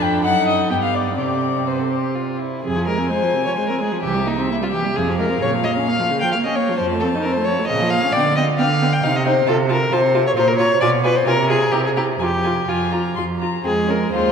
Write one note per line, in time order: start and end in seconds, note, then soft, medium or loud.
0.00 0.26 F2 medium
0.00 0.26 D4 medium
0.00 0.23 A4 medium
0.00 0.24 G5 medium
0.24 0.70 F#2 medium
0.24 0.72 D#4 medium
0.24 0.71 A4 medium
0.24 0.47 F#5 medium
0.48 0.70 D#5 medium
0.70 1.20 G2 soft
0.70 1.16 B3 soft
0.70 1.16 G4 soft
0.70 0.76 G5 medium
0.82 0.96 F5 medium
0.94 1.17 D5 medium
1.16 2.43 C3 soft
1.16 2.40 C4 soft
1.16 1.60 G4 soft
1.16 1.68 D5 medium
1.67 1.81 B4 soft
1.67 2.16 C5 soft
1.80 1.92 A4 soft
1.91 2.16 G4 soft
2.15 2.42 F4 soft
2.40 2.64 E4 soft
2.64 3.04 F2 medium
2.64 2.77 C3 soft
2.64 2.86 G#4 medium
2.64 4.00 G#5 medium
2.76 2.89 F3 soft
2.87 3.00 G#3 soft
2.87 3.10 A#4 medium
2.98 3.12 C4 soft
3.10 3.24 G#3 soft
3.10 3.45 C5 medium
3.23 3.35 F3 soft
3.34 3.48 C3 soft
3.45 3.59 F3 soft
3.45 3.57 C#5 medium
3.57 3.71 G#3 soft
3.57 3.68 C5 medium
3.69 3.82 C4 soft
3.69 3.80 A#4 medium
3.80 3.94 G#3 soft
3.80 4.02 G#4 medium
3.92 4.03 F3 soft
4.02 4.42 C2 medium
4.02 4.16 E3 medium
4.02 4.29 G4 medium
4.02 4.97 E5 medium
4.15 4.28 G3 soft
4.26 4.39 A#3 soft
4.26 4.50 D#4 medium
4.37 4.51 C4 soft
4.50 4.62 A#3 medium
4.50 4.55 E4 medium
4.61 4.74 G3 soft
4.61 4.67 F4 medium
4.72 4.86 E3 soft
4.72 4.97 G4 medium
4.84 4.95 G3 soft
4.96 5.34 F2 medium
4.96 5.09 C3 soft
4.96 5.19 G#4 medium
4.96 6.78 F5 medium
5.08 5.20 F3 soft
5.19 5.31 G#3 soft
5.19 5.41 A#4 medium
5.29 5.41 C4 soft
5.41 5.80 A#2 medium
5.41 5.55 C#3 soft
5.41 5.50 C#5 medium
5.54 5.67 F3 soft
5.64 5.78 A#3 soft
5.64 5.72 D#5 medium
5.77 5.90 C#4 soft
5.86 6.01 A#3 medium
5.86 6.21 F5 medium
5.99 6.12 F3 soft
6.11 6.24 C#3 soft
6.21 6.36 F3 soft
6.21 6.32 G5 medium
6.32 6.46 A#3 medium
6.32 6.37 F5 medium
6.45 6.58 C#4 soft
6.45 6.57 D#5 medium
6.56 6.70 A#3 soft
6.56 6.77 C#5 medium
6.69 6.79 F3 soft
6.77 7.17 F2 medium
6.77 6.94 F3 medium
6.77 6.85 C5 medium
6.77 7.70 A5 medium
6.92 7.04 A3 medium
7.00 7.16 C4 medium
7.00 7.08 A4 medium
7.15 7.27 D#4 medium
7.22 7.38 C4 medium
7.22 7.34 A#4 medium
7.33 7.46 C5 medium
7.37 7.49 A3 medium
7.45 7.60 F3 medium
7.45 7.67 C#5 medium
7.59 7.70 A3 medium
7.67 8.06 A#2 medium
7.67 7.83 C#3 medium
7.67 7.92 D#5 medium
7.67 8.13 F5 medium
7.82 7.94 F3 medium
7.90 8.06 A#3 medium
7.90 8.14 F5 medium
8.04 8.15 C#4 soft
8.12 8.53 D3 medium
8.12 8.24 B3 medium
8.12 8.36 D5 medium
8.12 8.22 G5 medium
8.36 8.45 B3 medium
8.36 8.44 D#5 medium
8.36 8.44 G5 medium
8.58 8.99 D3 medium
8.58 8.67 B3 medium
8.58 8.95 F5 medium
8.58 8.67 G5 medium
8.81 8.89 B3 medium
8.81 8.89 G5 medium
8.93 9.05 G5 medium
9.03 9.42 C3 medium
9.03 9.11 D#4 medium
9.03 9.18 F5 medium
9.03 9.12 G5 medium
9.16 9.26 D#5 medium
9.25 9.34 D#4 medium
9.25 9.48 C5 medium
9.25 9.33 G5 medium
9.46 9.87 C3 medium
9.46 9.55 F4 medium
9.46 9.56 A4 medium
9.46 9.54 A5 medium
9.68 9.76 F4 medium
9.68 9.94 A#4 medium
9.68 9.77 A5 medium
9.91 10.32 C3 medium
9.91 9.99 F4 medium
9.91 10.26 C5 medium
9.91 10.00 A5 medium
10.14 10.22 F4 medium
10.14 10.23 A5 medium
10.27 10.31 C#5 medium
10.36 10.76 A#2 medium
10.36 10.44 F4 medium
10.36 10.49 C5 medium
10.36 10.45 A#5 medium
10.48 10.57 A#4 medium
10.58 10.67 F4 medium
10.58 10.80 C#5 medium
10.58 10.68 A#5 medium
10.81 11.21 B2 medium
10.81 10.90 F4 medium
10.81 10.89 D5 medium
10.81 10.89 G#5 medium
11.04 11.12 F4 medium
11.04 11.17 B4 medium
11.04 11.12 G#5 medium
11.16 11.27 C5 medium
11.26 11.67 C3 medium
11.26 11.35 F4 medium
11.26 11.49 A#4 medium
11.26 11.35 G#5 medium
11.50 11.58 F4 medium
11.50 11.73 G#4 medium
11.50 11.58 G#5 soft
11.72 12.15 C3 medium
11.72 11.81 E4 medium
11.72 11.84 G4 medium
11.72 11.80 A#5 medium
11.86 11.91 G#4 medium
11.96 12.05 E4 soft
11.96 12.05 G4 medium
11.96 12.04 A#5 medium
12.19 12.63 F2 medium
12.19 12.29 F4 medium
12.19 12.70 G4 medium
12.19 12.27 G#5 soft
12.43 12.53 F4 soft
12.43 12.51 G#5 soft
12.67 13.11 F2 medium
12.67 13.17 F4 medium
12.67 12.77 F4 medium
12.67 12.93 G#5 medium
12.91 13.00 F4 soft
12.91 13.15 A#5 medium
13.15 13.60 F2 medium
13.15 13.26 F4 soft
13.15 13.23 C6 medium
13.40 13.49 F4 soft
13.40 13.63 A#5 medium
13.64 14.09 F2 medium
13.64 14.10 G#3 medium
13.64 13.72 C4 medium
13.64 13.92 G#4 medium
13.87 13.95 C#4 medium
13.87 14.11 A#4 medium
14.12 14.32 D#2 medium
14.12 14.32 G#3 medium
14.12 14.32 F4 medium
14.12 14.32 C5 medium